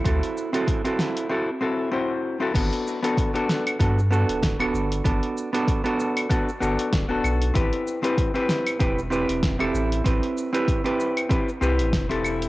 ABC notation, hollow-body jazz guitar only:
X:1
M:4/4
L:1/16
Q:"Swing 16ths" 1/4=96
K:G
V:1 name="Hollow-body jazz guitar"
[CEFA]3 [CEFA]2 [CEFA]3 [CEFA] z [CEFA]2 [CEFc]3 [CEFA] | [B,DFA]3 [B,DFA]2 [B,DFA]3 [B,DFA] z [B,DFA]3 [B,DFA]3 | [B,DFA]3 [B,DFA]2 [B,DFA]3 [B,DFA] z [B,DFA]3 [B,DFA]3 | [CEGB]3 [CEGB]2 [CEGB]3 [CEGB] z [CEGB]3 [CEGA]3 |
[CEGB]3 [CEGB]2 [CEGB]3 [CEGB] z [CEGB]3 [CEGA]3 |]